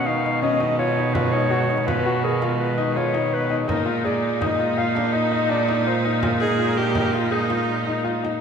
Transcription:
Already playing: string section B2 D#3 G#3, cello B2
0.06 grand piano D#4, clarinet F5
0.24 grand piano D#4
0.42 grand piano C#4, clarinet D#5, frame drum
0.60 grand piano D#4, frame drum
0.79 grand piano F4, clarinet C#5
0.97 grand piano D#4
1.14 grand piano F4, clarinet B4, frame drum
1.31 grand piano D#4, clarinet C#5
1.51 grand piano F#4, frame drum
1.69 grand piano D#4
1.87 grand piano F4, clarinet B4, frame drum
2.06 grand piano F#4, frame drum
2.24 grand piano G#4, clarinet A#4
2.42 grand piano F4, frame drum
2.60 clarinet B4
2.78 grand piano D#4
2.96 grand piano F4, clarinet C#5, frame drum
3.14 grand piano D#4, frame drum
3.33 clarinet B4
3.50 grand piano D#4
3.68 string section A#2 D#4, cello A#2, grand piano D#4, clarinet A#4, frame drum
3.86 grand piano F4
4.05 grand piano G#4, clarinet D5, frame drum
4.41 grand piano D#4, clarinet D#5, frame drum
4.59 grand piano F4, frame drum
4.77 grand piano F4, clarinet F5
4.95 grand piano D4, frame drum
5.13 grand piano D#4, clarinet D#5
5.32 grand piano D#4
5.49 grand piano D4, clarinet D5, frame drum
5.68 grand piano D#4, frame drum
5.86 grand piano F4, clarinet C5
6.05 grand piano D#4, clarinet A#4
6.22 string section G#3, grand piano F4, frame drum
6.40 grand piano D#4, viola G#4
6.59 grand piano F4, frame drum
6.77 grand piano D4, viola G4, frame drum
6.95 grand piano D#4, frame drum
7.13 viola F4, grand piano F4, frame drum
7.31 viola D#4, grand piano G#4
7.50 grand piano F4, frame drum
7.87 grand piano D#4
8.04 grand piano F4
8.23 grand piano D#4, frame drum

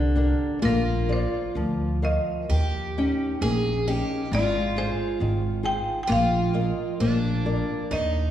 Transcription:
Already playing: upright bass C2, nylon-string guitar D3, twelve-string acoustic guitar D4, marimba C5
0.16 nylon-string guitar D4 G4 A#4
0.62 upright bass A#1, nylon-string guitar A#3, twelve-string acoustic guitar F4, marimba A#4
1.09 nylon-string guitar A#4 C5 D5, marimba C5
1.55 upright bass D2, nylon-string guitar F3
2.02 nylon-string guitar A#4 C5 F5, marimba D#5
2.49 upright bass D#2, nylon-string guitar D#3, twelve-string acoustic guitar G4
2.98 nylon-string guitar C#4 D#4 G5
3.41 upright bass A#1, nylon-string guitar A#3, twelve-string acoustic guitar G#4
3.87 nylon-string guitar C#4 D#4 G4, twelve-string acoustic guitar G4
4.31 upright bass G#1, nylon-string guitar G#3, twelve-string acoustic guitar F4, marimba D5
4.77 nylon-string guitar F4 G#4 C5, marimba C5
5.20 upright bass G#1, nylon-string guitar D#3
5.63 nylon-string guitar F4 G#4 C5, marimba G5
6.03 marimba G5
6.07 upright bass A#1, nylon-string guitar A#3, twelve-string acoustic guitar F4
6.12 marimba F5
6.54 nylon-string guitar F4 A#4 D#5
7.00 upright bass A#1, nylon-string guitar A#3, twelve-string acoustic guitar D4
7.45 nylon-string guitar F4 A#4 D5
7.91 upright bass D#2, nylon-string guitar D#3, twelve-string acoustic guitar D#4, marimba D#5

